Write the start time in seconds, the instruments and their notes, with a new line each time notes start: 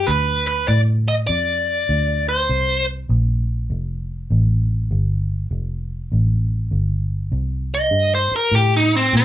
Already playing: overdriven electric guitar G4
0.07 fingered electric bass D2, overdriven electric guitar B4
0.47 overdriven electric guitar B4
0.68 fingered electric bass A2, overdriven electric guitar D5
1.08 overdriven electric guitar D#5
1.27 fingered electric bass F2, overdriven electric guitar D5
1.89 fingered electric bass D2
2.29 overdriven electric guitar C5
2.49 fingered electric bass C2
3.09 fingered electric bass A#1
3.70 fingered electric bass F1
4.30 fingered electric bass A1
4.91 fingered electric bass G1
5.51 fingered electric bass F1
6.12 fingered electric bass A1
6.71 fingered electric bass G1
7.32 fingered electric bass C2
7.74 overdriven electric guitar D#5
7.91 fingered electric bass G2
8.15 overdriven electric guitar C5
8.32 muted fingered electric bass stroke
8.36 overdriven electric guitar A#4
8.52 fingered electric bass A2, overdriven electric guitar G4
8.77 overdriven electric guitar D#4
8.97 overdriven electric guitar C4
9.13 fingered electric bass A#2, overdriven electric guitar C4